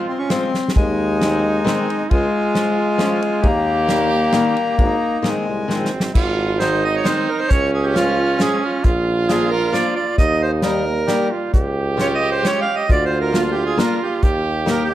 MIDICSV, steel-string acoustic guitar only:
0, 0, Header, 1, 2, 480
1, 0, Start_track
1, 0, Key_signature, -4, "major"
1, 0, Tempo, 451128
1, 803, Time_signature, 3, 2, 24, 8
1, 7994, Tempo, 447094
1, 15967, End_track
2, 0, Start_track
2, 0, Title_t, "Steel-string acoustic guitar"
2, 0, Program_c, 0, 25
2, 319, Note_on_c, 0, 53, 52
2, 325, Note_on_c, 0, 56, 50
2, 327, Note_on_c, 0, 60, 53
2, 546, Note_off_c, 0, 53, 0
2, 546, Note_off_c, 0, 60, 0
2, 547, Note_off_c, 0, 56, 0
2, 1289, Note_on_c, 0, 51, 48
2, 1293, Note_on_c, 0, 56, 40
2, 1296, Note_on_c, 0, 60, 53
2, 1512, Note_off_c, 0, 56, 0
2, 1514, Note_off_c, 0, 51, 0
2, 1516, Note_off_c, 0, 60, 0
2, 1750, Note_on_c, 0, 51, 72
2, 1756, Note_on_c, 0, 56, 55
2, 1767, Note_on_c, 0, 60, 70
2, 1982, Note_off_c, 0, 51, 0
2, 1982, Note_off_c, 0, 56, 0
2, 1984, Note_off_c, 0, 60, 0
2, 2702, Note_on_c, 0, 53, 44
2, 2708, Note_on_c, 0, 56, 44
2, 2709, Note_on_c, 0, 61, 47
2, 2926, Note_off_c, 0, 61, 0
2, 2927, Note_off_c, 0, 53, 0
2, 2928, Note_off_c, 0, 56, 0
2, 3171, Note_on_c, 0, 53, 61
2, 3178, Note_on_c, 0, 56, 54
2, 3185, Note_on_c, 0, 61, 72
2, 3396, Note_off_c, 0, 53, 0
2, 3397, Note_off_c, 0, 56, 0
2, 3398, Note_off_c, 0, 61, 0
2, 4123, Note_on_c, 0, 51, 53
2, 4131, Note_on_c, 0, 58, 53
2, 4135, Note_on_c, 0, 55, 44
2, 4350, Note_off_c, 0, 51, 0
2, 4350, Note_off_c, 0, 55, 0
2, 4352, Note_off_c, 0, 58, 0
2, 4608, Note_on_c, 0, 58, 60
2, 4612, Note_on_c, 0, 51, 69
2, 4612, Note_on_c, 0, 55, 49
2, 4831, Note_off_c, 0, 55, 0
2, 4832, Note_off_c, 0, 58, 0
2, 4833, Note_off_c, 0, 51, 0
2, 5558, Note_on_c, 0, 56, 47
2, 5560, Note_on_c, 0, 51, 50
2, 5570, Note_on_c, 0, 60, 50
2, 5788, Note_off_c, 0, 56, 0
2, 5790, Note_off_c, 0, 51, 0
2, 5792, Note_off_c, 0, 60, 0
2, 6043, Note_on_c, 0, 51, 54
2, 6053, Note_on_c, 0, 56, 44
2, 6060, Note_on_c, 0, 60, 50
2, 6279, Note_off_c, 0, 51, 0
2, 6280, Note_off_c, 0, 56, 0
2, 6280, Note_off_c, 0, 60, 0
2, 7022, Note_on_c, 0, 51, 52
2, 7032, Note_on_c, 0, 56, 35
2, 7037, Note_on_c, 0, 60, 47
2, 7252, Note_off_c, 0, 51, 0
2, 7253, Note_off_c, 0, 56, 0
2, 7254, Note_off_c, 0, 60, 0
2, 7494, Note_on_c, 0, 51, 65
2, 7499, Note_on_c, 0, 56, 47
2, 7508, Note_on_c, 0, 60, 53
2, 7728, Note_off_c, 0, 56, 0
2, 7729, Note_off_c, 0, 51, 0
2, 7730, Note_off_c, 0, 60, 0
2, 8450, Note_on_c, 0, 53, 47
2, 8461, Note_on_c, 0, 56, 41
2, 8465, Note_on_c, 0, 61, 51
2, 8686, Note_off_c, 0, 53, 0
2, 8686, Note_off_c, 0, 61, 0
2, 8688, Note_off_c, 0, 56, 0
2, 8930, Note_on_c, 0, 56, 56
2, 8934, Note_on_c, 0, 53, 61
2, 8940, Note_on_c, 0, 61, 52
2, 9162, Note_off_c, 0, 56, 0
2, 9164, Note_off_c, 0, 53, 0
2, 9165, Note_off_c, 0, 61, 0
2, 9898, Note_on_c, 0, 58, 42
2, 9905, Note_on_c, 0, 53, 56
2, 9908, Note_on_c, 0, 62, 48
2, 10124, Note_off_c, 0, 58, 0
2, 10125, Note_off_c, 0, 62, 0
2, 10126, Note_off_c, 0, 53, 0
2, 10369, Note_on_c, 0, 53, 62
2, 10375, Note_on_c, 0, 58, 51
2, 10379, Note_on_c, 0, 62, 57
2, 10595, Note_off_c, 0, 53, 0
2, 10596, Note_off_c, 0, 62, 0
2, 10597, Note_off_c, 0, 58, 0
2, 11334, Note_on_c, 0, 55, 53
2, 11340, Note_on_c, 0, 58, 45
2, 11349, Note_on_c, 0, 63, 50
2, 11563, Note_off_c, 0, 55, 0
2, 11563, Note_off_c, 0, 58, 0
2, 11565, Note_off_c, 0, 63, 0
2, 11820, Note_on_c, 0, 55, 58
2, 11828, Note_on_c, 0, 58, 44
2, 11831, Note_on_c, 0, 63, 46
2, 12049, Note_off_c, 0, 63, 0
2, 12051, Note_off_c, 0, 55, 0
2, 12051, Note_off_c, 0, 58, 0
2, 12778, Note_on_c, 0, 56, 58
2, 12786, Note_on_c, 0, 61, 46
2, 12788, Note_on_c, 0, 65, 58
2, 13016, Note_off_c, 0, 56, 0
2, 13017, Note_off_c, 0, 65, 0
2, 13018, Note_off_c, 0, 61, 0
2, 13273, Note_on_c, 0, 56, 64
2, 13280, Note_on_c, 0, 61, 52
2, 13287, Note_on_c, 0, 65, 47
2, 13506, Note_off_c, 0, 56, 0
2, 13507, Note_off_c, 0, 61, 0
2, 13508, Note_off_c, 0, 65, 0
2, 14230, Note_on_c, 0, 58, 48
2, 14233, Note_on_c, 0, 62, 47
2, 14243, Note_on_c, 0, 65, 40
2, 14463, Note_off_c, 0, 62, 0
2, 14464, Note_off_c, 0, 58, 0
2, 14465, Note_off_c, 0, 65, 0
2, 14715, Note_on_c, 0, 58, 64
2, 14721, Note_on_c, 0, 62, 48
2, 14725, Note_on_c, 0, 65, 57
2, 14942, Note_off_c, 0, 58, 0
2, 14942, Note_off_c, 0, 65, 0
2, 14943, Note_off_c, 0, 62, 0
2, 15666, Note_on_c, 0, 58, 57
2, 15673, Note_on_c, 0, 67, 51
2, 15674, Note_on_c, 0, 63, 48
2, 15890, Note_off_c, 0, 58, 0
2, 15893, Note_off_c, 0, 63, 0
2, 15893, Note_off_c, 0, 67, 0
2, 15967, End_track
0, 0, End_of_file